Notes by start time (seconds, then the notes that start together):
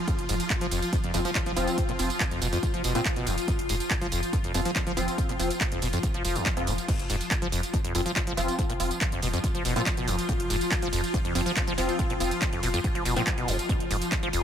Already playing: F3 F4
0.08 F2, kick, closed hi-hat, tambourine
0.19 F1, closed hi-hat
0.29 F1 G#2, open hi-hat, tambourine
0.40 closed hi-hat, tambourine
0.50 kick, clap, closed hi-hat, tambourine
0.61 F1 F3, closed hi-hat
0.71 F1 F2, open hi-hat, tambourine
0.82 closed hi-hat, tambourine
0.93 F2, kick, closed hi-hat, tambourine
1.04 F1 F2, closed hi-hat
1.14 F1 F2 F3 C4 F4, open hi-hat, tambourine
1.25 F3, closed hi-hat, tambourine
1.35 F3, kick, clap, closed hi-hat
1.46 F1 F3, closed hi-hat
1.56 F1 F3 C4 F4, open hi-hat, tambourine
1.68 closed hi-hat, tambourine
1.78 F2, kick, closed hi-hat, tambourine
1.89 F1 A#2, closed hi-hat
1.99 F1 F3 C4 F4, open hi-hat, tambourine
2.10 closed hi-hat, tambourine
2.20 kick, clap, closed hi-hat, tambourine
2.31 F1 F2, closed hi-hat
2.42 F1 B2, open hi-hat, tambourine
2.52 F2, closed hi-hat, tambourine
2.63 F2, kick, closed hi-hat, tambourine
2.74 F1 F3, closed hi-hat
2.84 F1 B2, open hi-hat, tambourine
2.95 A#2 F3 C4 F4, closed hi-hat, tambourine
3.05 kick, clap, closed hi-hat, tambourine
3.16 F1 B2, closed hi-hat
3.27 F1 F2, open hi-hat, tambourine
3.38 closed hi-hat, tambourine
3.48 F2, kick, closed hi-hat, tambourine
3.59 F1, closed hi-hat
3.69 F1 G#2, open hi-hat, tambourine
3.80 closed hi-hat, tambourine
3.90 kick, clap, closed hi-hat
4.01 F1 F3, closed hi-hat
4.12 F1 F2, open hi-hat, tambourine
4.23 closed hi-hat, tambourine
4.33 F2, kick, closed hi-hat, tambourine
4.44 F1 F2, closed hi-hat
4.54 F1 F2 F3 C4 F4, open hi-hat, tambourine
4.65 F3, closed hi-hat, tambourine
4.76 F3, kick, clap, closed hi-hat, tambourine
4.87 F1 F3, closed hi-hat
4.97 F1 F3 C4 F4, open hi-hat, tambourine
5.08 closed hi-hat, tambourine
5.18 F2, kick, closed hi-hat, tambourine
5.29 F1 A#2, closed hi-hat
5.39 F1 F3 C4 F4, open hi-hat, tambourine
5.50 closed hi-hat, tambourine
5.61 kick, clap, closed hi-hat, tambourine
5.72 F1 F2, closed hi-hat
5.82 F1 B2, open hi-hat, tambourine
5.93 F2, closed hi-hat, tambourine
6.03 F2, kick, closed hi-hat, tambourine
6.14 F1 F3, closed hi-hat
6.25 F1 F3, open hi-hat, tambourine
6.36 D#2, closed hi-hat, tambourine
6.46 F3, kick, clap, closed hi-hat
6.57 F1 F2 F3 C4 F4, closed hi-hat
6.67 F1 B2, open hi-hat, tambourine
6.78 closed hi-hat, tambourine
6.88 F2 F3 F4, kick, closed hi-hat, crash, tambourine
6.99 F1, closed hi-hat
7.10 F1 G#2, open hi-hat, tambourine
7.21 closed hi-hat, tambourine
7.31 kick, clap, closed hi-hat, tambourine
7.42 F1 F3, closed hi-hat
7.52 F1 F2, open hi-hat, tambourine
7.63 closed hi-hat, tambourine
7.73 F2, kick, closed hi-hat, tambourine
7.84 F1 F2, closed hi-hat
7.95 F1 F2 F3 C4 F4, open hi-hat, tambourine
8.06 F3, closed hi-hat, tambourine
8.16 F3, kick, clap, closed hi-hat, tambourine
8.27 F1 F3, closed hi-hat
8.37 F1 F3 C4 F4, open hi-hat, tambourine
8.48 closed hi-hat, tambourine
8.59 F2, kick, closed hi-hat, tambourine
8.70 F1 A#2, closed hi-hat
8.80 F1 F3 C4 F4, open hi-hat, tambourine
8.91 closed hi-hat, tambourine
9.01 kick, clap, closed hi-hat
9.12 F1 F2, closed hi-hat
9.22 F1 B2, open hi-hat, tambourine
9.33 F2, closed hi-hat, tambourine
9.44 F2, kick, closed hi-hat, tambourine
9.55 F1 F3, closed hi-hat
9.65 F1 B2, open hi-hat, tambourine
9.76 A#2 F3 C4 F4, closed hi-hat, tambourine
9.86 kick, clap, closed hi-hat, tambourine
9.97 F1 B2, closed hi-hat
10.07 F1 F2, open hi-hat, tambourine
10.19 closed hi-hat, tambourine
10.29 F2, kick, closed hi-hat, tambourine
10.40 F1, closed hi-hat
10.50 F1 G#2, open hi-hat, tambourine
10.61 closed hi-hat, tambourine
10.71 kick, clap, closed hi-hat, tambourine
10.82 F1 F3, closed hi-hat
10.93 F1 F2, open hi-hat, tambourine
11.04 closed hi-hat, tambourine
11.14 F2, kick, closed hi-hat, tambourine
11.25 F1 F2, closed hi-hat
11.35 F1 F2 F3 C4 F4, open hi-hat, tambourine
11.46 F3, closed hi-hat, tambourine
11.56 F3, kick, clap, closed hi-hat, tambourine
11.67 F1 F3, closed hi-hat
11.78 F1 F3 C4 F4, open hi-hat, tambourine
11.89 closed hi-hat, tambourine
11.99 F2, kick, closed hi-hat, tambourine
12.10 F1 A#2, closed hi-hat
12.20 F1 F3 C4 F4, open hi-hat, tambourine
12.31 closed hi-hat, tambourine
12.42 kick, clap, closed hi-hat, tambourine
12.53 F1 F2, closed hi-hat
12.63 F1 B2, open hi-hat, tambourine
12.74 F2, closed hi-hat, tambourine
12.84 F2, kick, closed hi-hat, tambourine
12.95 F1 F3, closed hi-hat
13.05 F1 B2, open hi-hat, tambourine
13.16 A#2 F3 C4 F4, closed hi-hat, tambourine
13.27 kick, clap, closed hi-hat, tambourine
13.38 F1 B2, closed hi-hat
13.48 F1 F2, open hi-hat, tambourine
13.59 closed hi-hat, tambourine
13.69 F2, kick, closed hi-hat, tambourine
13.80 F1, closed hi-hat
13.90 F1 G#2, open hi-hat, tambourine
14.02 closed hi-hat, tambourine
14.12 kick, clap, closed hi-hat
14.23 F1 F3, closed hi-hat
14.33 F1 F2, open hi-hat, tambourine